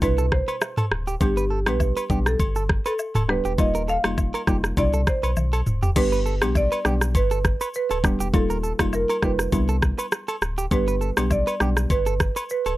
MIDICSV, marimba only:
0, 0, Header, 1, 2, 480
1, 0, Start_track
1, 0, Key_signature, 1, "major"
1, 0, Tempo, 594059
1, 977, Time_signature, 4, 2, 24, 8
1, 10321, End_track
2, 0, Start_track
2, 0, Title_t, "Marimba"
2, 0, Program_c, 0, 12
2, 25, Note_on_c, 0, 71, 98
2, 131, Note_off_c, 0, 71, 0
2, 265, Note_on_c, 0, 72, 101
2, 709, Note_off_c, 0, 72, 0
2, 988, Note_on_c, 0, 67, 87
2, 1361, Note_on_c, 0, 71, 88
2, 1366, Note_off_c, 0, 67, 0
2, 1802, Note_off_c, 0, 71, 0
2, 1838, Note_on_c, 0, 69, 91
2, 2309, Note_off_c, 0, 69, 0
2, 2319, Note_on_c, 0, 69, 94
2, 2666, Note_on_c, 0, 71, 91
2, 2672, Note_off_c, 0, 69, 0
2, 2772, Note_off_c, 0, 71, 0
2, 2906, Note_on_c, 0, 75, 109
2, 3012, Note_off_c, 0, 75, 0
2, 3147, Note_on_c, 0, 77, 99
2, 3589, Note_off_c, 0, 77, 0
2, 3866, Note_on_c, 0, 74, 111
2, 4108, Note_on_c, 0, 72, 96
2, 4109, Note_off_c, 0, 74, 0
2, 4550, Note_off_c, 0, 72, 0
2, 4829, Note_on_c, 0, 71, 102
2, 5309, Note_on_c, 0, 74, 115
2, 5317, Note_off_c, 0, 71, 0
2, 5790, Note_on_c, 0, 71, 98
2, 5797, Note_off_c, 0, 74, 0
2, 6259, Note_off_c, 0, 71, 0
2, 6269, Note_on_c, 0, 71, 98
2, 6747, Note_on_c, 0, 69, 98
2, 6757, Note_off_c, 0, 71, 0
2, 7228, Note_on_c, 0, 70, 91
2, 7236, Note_off_c, 0, 69, 0
2, 7467, Note_on_c, 0, 71, 84
2, 7469, Note_off_c, 0, 70, 0
2, 8389, Note_off_c, 0, 71, 0
2, 8669, Note_on_c, 0, 71, 107
2, 9147, Note_on_c, 0, 74, 106
2, 9157, Note_off_c, 0, 71, 0
2, 9627, Note_on_c, 0, 71, 102
2, 9636, Note_off_c, 0, 74, 0
2, 10098, Note_off_c, 0, 71, 0
2, 10108, Note_on_c, 0, 71, 95
2, 10321, Note_off_c, 0, 71, 0
2, 10321, End_track
0, 0, End_of_file